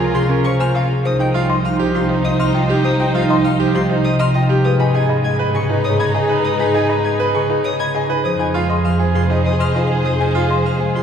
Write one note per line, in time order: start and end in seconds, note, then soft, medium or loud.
0.00 0.89 C#2 medium
0.00 0.14 C3 medium
0.00 1.04 F3 medium
0.00 1.07 G#3 medium
0.00 0.59 A#3 medium
0.00 0.74 C4 medium
0.00 0.18 F4 medium
0.00 0.86 F4 loud
0.00 0.19 G#4 loud
0.00 0.19 A#4 medium
0.00 0.86 A#4 loud
0.14 1.07 C3 loud
0.14 0.34 F4 medium
0.14 0.34 G#4 loud
0.14 0.26 C6 medium
0.28 0.49 C#4 medium
0.28 0.49 F4 medium
0.28 0.49 A#4 medium
0.44 0.65 C5 medium
0.44 0.56 C#6 loud
0.59 1.07 A#3 loud
0.59 0.81 F4 soft
0.59 0.79 C5 medium
0.59 0.79 G#5 medium
0.59 0.71 F6 medium
0.74 1.19 C4 medium
0.74 0.94 F4 medium
0.74 0.86 F5 medium
0.74 0.95 F5 medium
0.91 1.10 G#4 medium
1.05 4.49 C2 medium
1.05 1.64 F3 loud
1.05 4.46 D#4 loud
1.05 1.28 D#4 soft
1.05 4.46 C5 medium
1.05 1.25 C5 loud
1.05 1.16 D#6 medium
1.19 2.39 C4 medium
1.19 1.39 D#4 medium
1.19 1.31 G5 medium
1.19 1.39 G5 medium
1.34 1.79 G3 medium
1.34 1.59 D#4 medium
1.34 1.54 F4 loud
1.34 1.46 F5 loud
1.34 1.55 F5 medium
1.50 1.69 D#5 medium
1.50 1.69 C6 loud
1.65 2.84 F3 medium
1.65 1.90 D#4 medium
1.65 1.85 F5 medium
1.65 1.76 F6 medium
1.79 3.13 G3 medium
1.79 1.99 G4 loud
1.79 1.99 C5 medium
1.94 3.73 C3 loud
1.94 2.14 F4 medium
1.94 2.14 G4 medium
1.94 2.06 C6 medium
1.99 2.21 D#4 medium
2.09 2.29 D#4 medium
2.09 2.29 C5 medium
2.25 2.44 D#5 medium
2.25 2.36 D#6 medium
2.30 2.52 D#4 medium
2.39 2.98 C4 medium
2.39 2.59 D#5 medium
2.39 2.59 C6 loud
2.39 2.51 F6 medium
2.54 4.33 D#4 medium
2.54 2.74 F4 medium
2.54 2.66 D#5 medium
2.54 2.74 G5 medium
2.62 2.84 D#4 medium
2.70 2.89 G4 loud
2.70 2.89 G4 medium
2.84 3.43 F3 loud
2.84 3.04 C5 loud
2.84 2.96 D#6 medium
2.92 3.15 D#4 medium
2.99 4.18 C4 medium
2.99 3.19 D#4 medium
2.99 3.11 G5 medium
2.99 3.19 G5 medium
3.14 3.57 G3 medium
3.14 3.34 F4 loud
3.14 3.26 F5 loud
3.14 3.34 F5 medium
3.24 3.46 D#4 medium
3.30 3.49 D#5 medium
3.30 3.50 C6 loud
3.44 4.67 F3 medium
3.44 3.65 F5 medium
3.44 3.56 F6 medium
3.56 4.67 G3 medium
3.56 3.78 D#4 medium
3.60 3.79 G4 loud
3.60 3.79 C5 medium
3.74 4.67 C3 loud
3.74 3.94 F4 medium
3.74 3.94 G4 medium
3.74 3.86 C6 medium
3.87 4.09 D#4 medium
3.87 4.10 C5 medium
4.04 4.25 D#5 medium
4.04 4.16 D#6 loud
4.19 4.67 C4 medium
4.19 4.41 D#4 soft
4.19 4.39 D#5 medium
4.19 4.40 C6 medium
4.19 4.31 F6 medium
4.34 6.13 D#4 medium
4.34 4.54 F4 medium
4.34 4.46 D#5 medium
4.34 4.54 G5 medium
4.49 4.69 G4 loud
4.49 4.70 G4 medium
4.64 8.09 G#2 medium
4.64 5.23 G#3 loud
4.64 8.06 D#4 medium
4.64 4.87 G#4 soft
4.64 8.06 B4 medium
4.64 4.84 B4 loud
4.64 4.76 D#6 medium
4.79 5.98 C#4 medium
4.79 4.99 D#4 medium
4.79 5.00 G#5 medium
4.79 4.91 B5 medium
4.94 5.38 B3 medium
4.94 5.14 G#4 medium
4.94 5.18 G#4 medium
4.94 5.15 D#5 medium
4.94 5.06 G#5 loud
5.09 5.29 D#5 medium
5.09 5.29 B5 loud
5.24 6.43 G#3 medium
5.24 5.50 G#4 medium
5.24 5.45 D#5 medium
5.24 5.36 G#6 medium
5.39 6.73 B3 medium
5.39 5.59 B4 loud
5.39 5.59 B4 medium
5.54 7.34 C#3 loud
5.54 5.74 G#4 medium
5.54 5.75 G#4 loud
5.54 5.66 C#6 medium
5.59 5.81 G#4 medium
5.70 5.89 D#4 medium
5.70 5.89 B4 medium
5.84 6.04 C#5 medium
5.84 5.96 D#6 loud
5.90 6.12 G#4 medium
5.99 6.58 C#4 medium
5.99 6.19 D#5 medium
5.99 6.19 B5 medium
5.99 6.11 G#6 medium
6.14 7.93 D#4 medium
6.14 6.34 G#4 medium
6.14 6.26 D#5 medium
6.14 6.34 G#5 medium
6.21 6.43 G#4 medium
6.29 6.49 G#4 medium
6.29 6.49 B4 loud
6.44 7.03 G#3 loud
6.44 6.64 B4 loud
6.44 6.56 D#6 medium
6.53 6.75 G#4 medium
6.59 7.79 C#4 medium
6.59 6.79 D#4 medium
6.59 6.79 G#5 medium
6.59 6.71 B5 medium
6.74 7.19 B3 medium
6.74 6.94 G#4 loud
6.74 6.94 D#5 medium
6.74 6.86 G#5 loud
6.85 7.07 G#4 medium
6.89 7.09 D#5 medium
6.89 7.09 B5 medium
7.04 8.54 G#3 medium
7.04 7.24 D#5 medium
7.04 7.16 G#6 medium
7.17 8.27 B3 medium
7.17 7.38 G#4 medium
7.17 7.39 B4 loud
7.17 7.39 B4 medium
7.34 8.27 C#3 loud
7.34 7.54 G#4 medium
7.34 7.46 C#6 medium
7.48 7.69 D#4 medium
7.48 7.70 G#4 medium
7.48 7.69 B4 medium
7.64 7.84 C#5 medium
7.64 7.76 D#6 loud
7.79 8.27 C#4 medium
7.79 8.01 G#4 soft
7.79 7.99 D#5 medium
7.79 7.99 B5 medium
7.79 7.91 G#6 medium
7.95 8.27 D#4 medium
7.95 8.14 G#4 medium
7.95 8.06 D#5 medium
7.95 8.14 G#5 medium
8.09 8.29 G#4 medium
8.09 8.29 B4 loud
8.24 11.03 F2 medium
8.24 8.84 F3 loud
8.24 11.03 G#4 medium
8.24 8.47 G#4 soft
8.24 8.44 C5 loud
8.24 11.03 C5 medium
8.24 8.36 D#6 medium
8.39 9.58 C4 medium
8.39 8.59 D#4 medium
8.39 8.51 G#5 medium
8.39 8.59 G#5 medium
8.54 8.99 G#3 medium
8.54 8.74 F4 loud
8.54 8.79 G#4 medium
8.54 8.66 F5 medium
8.54 8.74 F5 medium
8.70 8.89 D#5 medium
8.70 8.90 C6 loud
8.85 9.44 F3 medium
8.85 9.10 G#4 medium
8.85 9.04 F5 medium
8.85 8.96 F6 medium
8.99 10.34 G#3 medium
8.99 9.19 G#4 medium
8.99 9.19 C5 medium
9.14 10.94 C3 medium
9.14 9.34 F4 medium
9.14 9.34 G#4 medium
9.14 9.26 C6 medium
9.20 9.42 G#4 medium
9.30 9.49 D#4 medium
9.30 9.49 C5 medium
9.30 9.41 D#5 medium
9.45 10.04 F3 medium
9.45 9.64 D#5 medium
9.45 9.56 D#6 medium
9.51 9.73 G#4 medium
9.59 10.19 C4 medium
9.59 9.79 D#5 medium
9.59 9.79 C6 medium
9.59 9.71 F6 medium
9.75 11.03 D#4 medium
9.75 9.94 F4 medium
9.75 9.86 D#5 medium
9.75 9.94 G#5 medium
9.82 10.04 G#4 medium
9.90 10.09 G#4 medium
9.90 10.10 G#4 medium
10.05 10.64 F3 loud
10.05 10.24 C5 loud
10.05 10.16 D#6 medium
10.14 10.36 G#4 medium
10.20 11.03 C4 medium
10.20 10.39 D#4 medium
10.20 10.39 G#5 medium
10.20 10.31 G#5 medium
10.35 10.79 G#3 medium
10.35 10.54 F4 loud
10.35 10.46 F5 medium
10.35 10.54 F5 medium
10.46 10.67 G#4 medium
10.46 10.69 D#5 medium
10.51 10.70 C6 loud
10.65 11.03 F3 medium
10.65 10.85 F5 medium
10.65 10.77 F6 medium
10.77 11.03 G#3 medium
10.77 10.99 G#4 medium
10.77 11.00 C5 medium
10.95 11.03 C3 medium
10.95 11.03 F4 medium
10.95 11.03 G#4 medium
10.95 11.03 C6 medium